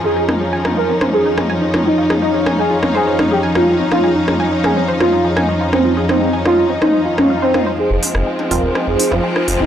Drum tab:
HH |----------------|----------------|----------------|----------------|
SD |--r--r--r--r--r-|-r--r--r--r--r--|r--r--r--r--r--r|--r--r--r--r--r-|
T2 |--o--o--o--o--o-|-o--o--o--o--o--|o--o--o--o--o--o|--o--o--o--o--o-|

HH |--o---o---o---o-|
SD |---r----r----r--|
T2 |--o--o--o--o--o-|